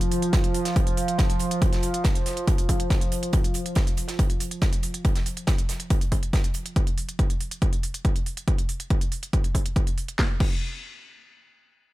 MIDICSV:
0, 0, Header, 1, 3, 480
1, 0, Start_track
1, 0, Tempo, 428571
1, 1811, Time_signature, 4, 2, 24, 8
1, 13365, End_track
2, 0, Start_track
2, 0, Title_t, "Synth drone"
2, 0, Program_c, 0, 95
2, 0, Note_on_c, 0, 53, 82
2, 7621, Note_off_c, 0, 53, 0
2, 13365, End_track
3, 0, Start_track
3, 0, Title_t, "Drums"
3, 11, Note_on_c, 9, 42, 71
3, 123, Note_off_c, 9, 42, 0
3, 129, Note_on_c, 9, 46, 103
3, 131, Note_on_c, 9, 42, 62
3, 241, Note_off_c, 9, 46, 0
3, 243, Note_off_c, 9, 42, 0
3, 251, Note_on_c, 9, 42, 63
3, 363, Note_off_c, 9, 42, 0
3, 369, Note_on_c, 9, 38, 127
3, 370, Note_on_c, 9, 42, 67
3, 372, Note_on_c, 9, 36, 125
3, 380, Note_off_c, 9, 42, 0
3, 380, Note_on_c, 9, 42, 94
3, 481, Note_off_c, 9, 38, 0
3, 484, Note_off_c, 9, 36, 0
3, 492, Note_off_c, 9, 42, 0
3, 492, Note_on_c, 9, 42, 68
3, 604, Note_off_c, 9, 42, 0
3, 610, Note_on_c, 9, 46, 100
3, 612, Note_on_c, 9, 42, 66
3, 722, Note_off_c, 9, 46, 0
3, 724, Note_off_c, 9, 42, 0
3, 732, Note_on_c, 9, 42, 66
3, 733, Note_on_c, 9, 38, 59
3, 844, Note_off_c, 9, 42, 0
3, 845, Note_off_c, 9, 38, 0
3, 852, Note_on_c, 9, 36, 125
3, 852, Note_on_c, 9, 42, 67
3, 856, Note_off_c, 9, 42, 0
3, 856, Note_on_c, 9, 42, 93
3, 964, Note_off_c, 9, 36, 0
3, 968, Note_off_c, 9, 42, 0
3, 972, Note_on_c, 9, 42, 64
3, 1084, Note_off_c, 9, 42, 0
3, 1091, Note_on_c, 9, 46, 108
3, 1096, Note_on_c, 9, 42, 62
3, 1203, Note_off_c, 9, 46, 0
3, 1208, Note_off_c, 9, 42, 0
3, 1212, Note_on_c, 9, 42, 68
3, 1324, Note_off_c, 9, 42, 0
3, 1327, Note_on_c, 9, 38, 115
3, 1331, Note_on_c, 9, 42, 67
3, 1332, Note_off_c, 9, 42, 0
3, 1332, Note_on_c, 9, 36, 125
3, 1332, Note_on_c, 9, 42, 90
3, 1439, Note_off_c, 9, 38, 0
3, 1444, Note_off_c, 9, 36, 0
3, 1444, Note_off_c, 9, 42, 0
3, 1453, Note_on_c, 9, 42, 72
3, 1562, Note_off_c, 9, 42, 0
3, 1562, Note_on_c, 9, 42, 62
3, 1571, Note_on_c, 9, 46, 94
3, 1674, Note_off_c, 9, 42, 0
3, 1683, Note_off_c, 9, 46, 0
3, 1693, Note_on_c, 9, 42, 67
3, 1805, Note_off_c, 9, 42, 0
3, 1811, Note_on_c, 9, 42, 80
3, 1812, Note_off_c, 9, 42, 0
3, 1812, Note_on_c, 9, 36, 116
3, 1812, Note_on_c, 9, 42, 67
3, 1924, Note_off_c, 9, 36, 0
3, 1924, Note_off_c, 9, 42, 0
3, 1934, Note_on_c, 9, 42, 64
3, 1939, Note_on_c, 9, 38, 51
3, 2046, Note_off_c, 9, 42, 0
3, 2046, Note_on_c, 9, 42, 72
3, 2051, Note_off_c, 9, 38, 0
3, 2051, Note_on_c, 9, 46, 102
3, 2158, Note_off_c, 9, 42, 0
3, 2163, Note_off_c, 9, 46, 0
3, 2173, Note_on_c, 9, 42, 63
3, 2285, Note_off_c, 9, 42, 0
3, 2286, Note_on_c, 9, 38, 119
3, 2292, Note_on_c, 9, 36, 118
3, 2292, Note_on_c, 9, 42, 86
3, 2398, Note_off_c, 9, 38, 0
3, 2404, Note_off_c, 9, 36, 0
3, 2404, Note_off_c, 9, 42, 0
3, 2413, Note_on_c, 9, 42, 65
3, 2525, Note_off_c, 9, 42, 0
3, 2531, Note_on_c, 9, 38, 43
3, 2531, Note_on_c, 9, 46, 95
3, 2539, Note_on_c, 9, 42, 62
3, 2643, Note_off_c, 9, 38, 0
3, 2643, Note_off_c, 9, 46, 0
3, 2651, Note_off_c, 9, 42, 0
3, 2654, Note_on_c, 9, 42, 62
3, 2766, Note_off_c, 9, 42, 0
3, 2772, Note_on_c, 9, 36, 120
3, 2772, Note_on_c, 9, 42, 69
3, 2776, Note_off_c, 9, 42, 0
3, 2776, Note_on_c, 9, 42, 94
3, 2884, Note_off_c, 9, 36, 0
3, 2888, Note_off_c, 9, 42, 0
3, 2893, Note_on_c, 9, 42, 64
3, 2895, Note_off_c, 9, 42, 0
3, 2895, Note_on_c, 9, 42, 36
3, 3007, Note_off_c, 9, 42, 0
3, 3013, Note_on_c, 9, 36, 61
3, 3013, Note_on_c, 9, 42, 68
3, 3013, Note_on_c, 9, 46, 107
3, 3125, Note_off_c, 9, 36, 0
3, 3125, Note_off_c, 9, 42, 0
3, 3125, Note_off_c, 9, 46, 0
3, 3134, Note_on_c, 9, 42, 65
3, 3246, Note_off_c, 9, 42, 0
3, 3252, Note_on_c, 9, 36, 123
3, 3252, Note_on_c, 9, 38, 107
3, 3253, Note_on_c, 9, 42, 60
3, 3257, Note_off_c, 9, 42, 0
3, 3257, Note_on_c, 9, 42, 82
3, 3364, Note_off_c, 9, 36, 0
3, 3364, Note_off_c, 9, 38, 0
3, 3369, Note_off_c, 9, 42, 0
3, 3375, Note_on_c, 9, 42, 69
3, 3487, Note_off_c, 9, 42, 0
3, 3493, Note_on_c, 9, 46, 92
3, 3498, Note_on_c, 9, 42, 69
3, 3605, Note_off_c, 9, 46, 0
3, 3610, Note_off_c, 9, 42, 0
3, 3616, Note_on_c, 9, 42, 66
3, 3728, Note_off_c, 9, 42, 0
3, 3728, Note_on_c, 9, 42, 87
3, 3733, Note_on_c, 9, 36, 117
3, 3734, Note_off_c, 9, 42, 0
3, 3734, Note_on_c, 9, 42, 63
3, 3845, Note_off_c, 9, 36, 0
3, 3846, Note_off_c, 9, 42, 0
3, 3857, Note_on_c, 9, 42, 61
3, 3965, Note_off_c, 9, 42, 0
3, 3965, Note_on_c, 9, 42, 67
3, 3975, Note_on_c, 9, 46, 98
3, 4077, Note_off_c, 9, 42, 0
3, 4087, Note_off_c, 9, 46, 0
3, 4096, Note_on_c, 9, 42, 58
3, 4204, Note_off_c, 9, 42, 0
3, 4204, Note_on_c, 9, 42, 85
3, 4213, Note_on_c, 9, 36, 120
3, 4214, Note_off_c, 9, 42, 0
3, 4214, Note_on_c, 9, 42, 62
3, 4218, Note_on_c, 9, 38, 108
3, 4325, Note_off_c, 9, 36, 0
3, 4326, Note_off_c, 9, 42, 0
3, 4330, Note_off_c, 9, 38, 0
3, 4336, Note_on_c, 9, 42, 60
3, 4448, Note_off_c, 9, 42, 0
3, 4448, Note_on_c, 9, 42, 61
3, 4454, Note_on_c, 9, 46, 93
3, 4560, Note_off_c, 9, 42, 0
3, 4566, Note_off_c, 9, 46, 0
3, 4567, Note_on_c, 9, 38, 56
3, 4576, Note_on_c, 9, 42, 63
3, 4679, Note_off_c, 9, 38, 0
3, 4688, Note_off_c, 9, 42, 0
3, 4693, Note_on_c, 9, 36, 114
3, 4693, Note_on_c, 9, 42, 63
3, 4700, Note_off_c, 9, 42, 0
3, 4700, Note_on_c, 9, 42, 86
3, 4805, Note_off_c, 9, 36, 0
3, 4812, Note_off_c, 9, 42, 0
3, 4814, Note_on_c, 9, 42, 60
3, 4926, Note_off_c, 9, 42, 0
3, 4933, Note_on_c, 9, 46, 105
3, 4943, Note_on_c, 9, 42, 64
3, 5045, Note_off_c, 9, 46, 0
3, 5054, Note_off_c, 9, 42, 0
3, 5054, Note_on_c, 9, 42, 61
3, 5166, Note_off_c, 9, 42, 0
3, 5170, Note_on_c, 9, 42, 79
3, 5171, Note_on_c, 9, 38, 106
3, 5173, Note_off_c, 9, 42, 0
3, 5173, Note_on_c, 9, 36, 117
3, 5173, Note_on_c, 9, 42, 59
3, 5283, Note_off_c, 9, 38, 0
3, 5285, Note_off_c, 9, 36, 0
3, 5285, Note_off_c, 9, 42, 0
3, 5293, Note_on_c, 9, 42, 65
3, 5405, Note_off_c, 9, 42, 0
3, 5408, Note_on_c, 9, 42, 64
3, 5412, Note_on_c, 9, 46, 89
3, 5520, Note_off_c, 9, 42, 0
3, 5524, Note_off_c, 9, 46, 0
3, 5534, Note_on_c, 9, 42, 65
3, 5646, Note_off_c, 9, 42, 0
3, 5652, Note_on_c, 9, 42, 59
3, 5653, Note_on_c, 9, 36, 117
3, 5656, Note_off_c, 9, 42, 0
3, 5656, Note_on_c, 9, 42, 92
3, 5765, Note_off_c, 9, 36, 0
3, 5768, Note_off_c, 9, 42, 0
3, 5770, Note_on_c, 9, 38, 49
3, 5774, Note_on_c, 9, 42, 61
3, 5882, Note_off_c, 9, 38, 0
3, 5886, Note_off_c, 9, 42, 0
3, 5892, Note_on_c, 9, 46, 98
3, 5901, Note_on_c, 9, 42, 61
3, 6004, Note_off_c, 9, 46, 0
3, 6013, Note_off_c, 9, 42, 0
3, 6014, Note_on_c, 9, 42, 61
3, 6126, Note_off_c, 9, 42, 0
3, 6128, Note_on_c, 9, 38, 126
3, 6130, Note_on_c, 9, 42, 96
3, 6132, Note_off_c, 9, 42, 0
3, 6132, Note_on_c, 9, 42, 59
3, 6133, Note_on_c, 9, 36, 114
3, 6240, Note_off_c, 9, 38, 0
3, 6244, Note_off_c, 9, 42, 0
3, 6245, Note_off_c, 9, 36, 0
3, 6255, Note_on_c, 9, 42, 61
3, 6367, Note_off_c, 9, 42, 0
3, 6372, Note_on_c, 9, 46, 90
3, 6375, Note_on_c, 9, 38, 46
3, 6378, Note_on_c, 9, 42, 69
3, 6484, Note_off_c, 9, 46, 0
3, 6487, Note_off_c, 9, 38, 0
3, 6490, Note_off_c, 9, 42, 0
3, 6494, Note_on_c, 9, 42, 61
3, 6606, Note_off_c, 9, 42, 0
3, 6612, Note_on_c, 9, 42, 63
3, 6613, Note_on_c, 9, 36, 112
3, 6614, Note_off_c, 9, 42, 0
3, 6614, Note_on_c, 9, 42, 79
3, 6725, Note_off_c, 9, 36, 0
3, 6726, Note_off_c, 9, 42, 0
3, 6735, Note_on_c, 9, 42, 60
3, 6736, Note_off_c, 9, 42, 0
3, 6736, Note_on_c, 9, 42, 44
3, 6848, Note_off_c, 9, 42, 0
3, 6853, Note_on_c, 9, 36, 59
3, 6853, Note_on_c, 9, 42, 75
3, 6853, Note_on_c, 9, 46, 100
3, 6965, Note_off_c, 9, 36, 0
3, 6965, Note_off_c, 9, 42, 0
3, 6965, Note_off_c, 9, 46, 0
3, 6975, Note_on_c, 9, 42, 61
3, 7087, Note_off_c, 9, 42, 0
3, 7093, Note_on_c, 9, 36, 114
3, 7093, Note_on_c, 9, 42, 60
3, 7103, Note_on_c, 9, 38, 104
3, 7106, Note_off_c, 9, 42, 0
3, 7106, Note_on_c, 9, 42, 91
3, 7205, Note_off_c, 9, 36, 0
3, 7214, Note_off_c, 9, 42, 0
3, 7214, Note_on_c, 9, 42, 63
3, 7215, Note_off_c, 9, 38, 0
3, 7324, Note_off_c, 9, 42, 0
3, 7324, Note_on_c, 9, 42, 70
3, 7333, Note_on_c, 9, 46, 84
3, 7436, Note_off_c, 9, 42, 0
3, 7445, Note_off_c, 9, 46, 0
3, 7455, Note_on_c, 9, 42, 64
3, 7567, Note_off_c, 9, 42, 0
3, 7573, Note_on_c, 9, 36, 112
3, 7573, Note_on_c, 9, 42, 61
3, 7685, Note_off_c, 9, 36, 0
3, 7685, Note_off_c, 9, 42, 0
3, 7695, Note_on_c, 9, 42, 62
3, 7807, Note_off_c, 9, 42, 0
3, 7813, Note_on_c, 9, 46, 94
3, 7925, Note_off_c, 9, 46, 0
3, 7936, Note_on_c, 9, 42, 58
3, 8048, Note_off_c, 9, 42, 0
3, 8053, Note_on_c, 9, 36, 110
3, 8054, Note_on_c, 9, 42, 59
3, 8165, Note_off_c, 9, 36, 0
3, 8166, Note_off_c, 9, 42, 0
3, 8176, Note_on_c, 9, 42, 62
3, 8288, Note_off_c, 9, 42, 0
3, 8294, Note_on_c, 9, 46, 87
3, 8406, Note_off_c, 9, 46, 0
3, 8415, Note_on_c, 9, 42, 63
3, 8527, Note_off_c, 9, 42, 0
3, 8533, Note_on_c, 9, 36, 110
3, 8534, Note_on_c, 9, 42, 65
3, 8645, Note_off_c, 9, 36, 0
3, 8646, Note_off_c, 9, 42, 0
3, 8655, Note_on_c, 9, 42, 61
3, 8767, Note_off_c, 9, 42, 0
3, 8774, Note_on_c, 9, 46, 98
3, 8886, Note_off_c, 9, 46, 0
3, 8895, Note_on_c, 9, 42, 61
3, 9007, Note_off_c, 9, 42, 0
3, 9013, Note_on_c, 9, 36, 109
3, 9014, Note_on_c, 9, 42, 63
3, 9125, Note_off_c, 9, 36, 0
3, 9126, Note_off_c, 9, 42, 0
3, 9136, Note_on_c, 9, 42, 63
3, 9248, Note_off_c, 9, 42, 0
3, 9255, Note_on_c, 9, 46, 86
3, 9367, Note_off_c, 9, 46, 0
3, 9376, Note_on_c, 9, 42, 62
3, 9488, Note_off_c, 9, 42, 0
3, 9493, Note_on_c, 9, 36, 111
3, 9494, Note_on_c, 9, 42, 65
3, 9605, Note_off_c, 9, 36, 0
3, 9606, Note_off_c, 9, 42, 0
3, 9615, Note_on_c, 9, 42, 66
3, 9727, Note_off_c, 9, 42, 0
3, 9732, Note_on_c, 9, 46, 99
3, 9844, Note_off_c, 9, 46, 0
3, 9855, Note_on_c, 9, 42, 62
3, 9967, Note_off_c, 9, 42, 0
3, 9973, Note_on_c, 9, 36, 112
3, 9973, Note_on_c, 9, 42, 63
3, 10085, Note_off_c, 9, 36, 0
3, 10085, Note_off_c, 9, 42, 0
3, 10095, Note_on_c, 9, 42, 64
3, 10207, Note_off_c, 9, 42, 0
3, 10212, Note_on_c, 9, 46, 87
3, 10324, Note_off_c, 9, 46, 0
3, 10336, Note_on_c, 9, 42, 67
3, 10448, Note_off_c, 9, 42, 0
3, 10453, Note_on_c, 9, 36, 113
3, 10454, Note_on_c, 9, 42, 68
3, 10565, Note_off_c, 9, 36, 0
3, 10566, Note_off_c, 9, 42, 0
3, 10576, Note_on_c, 9, 42, 64
3, 10688, Note_off_c, 9, 42, 0
3, 10693, Note_on_c, 9, 36, 57
3, 10694, Note_on_c, 9, 46, 96
3, 10805, Note_off_c, 9, 36, 0
3, 10806, Note_off_c, 9, 46, 0
3, 10815, Note_on_c, 9, 42, 65
3, 10927, Note_off_c, 9, 42, 0
3, 10932, Note_on_c, 9, 36, 118
3, 10933, Note_on_c, 9, 42, 61
3, 11044, Note_off_c, 9, 36, 0
3, 11045, Note_off_c, 9, 42, 0
3, 11055, Note_on_c, 9, 42, 65
3, 11167, Note_off_c, 9, 42, 0
3, 11174, Note_on_c, 9, 46, 82
3, 11286, Note_off_c, 9, 46, 0
3, 11295, Note_on_c, 9, 42, 68
3, 11407, Note_off_c, 9, 42, 0
3, 11412, Note_on_c, 9, 36, 108
3, 11413, Note_on_c, 9, 38, 81
3, 11524, Note_off_c, 9, 36, 0
3, 11525, Note_off_c, 9, 38, 0
3, 11652, Note_on_c, 9, 36, 108
3, 11653, Note_on_c, 9, 49, 83
3, 11764, Note_off_c, 9, 36, 0
3, 11765, Note_off_c, 9, 49, 0
3, 13365, End_track
0, 0, End_of_file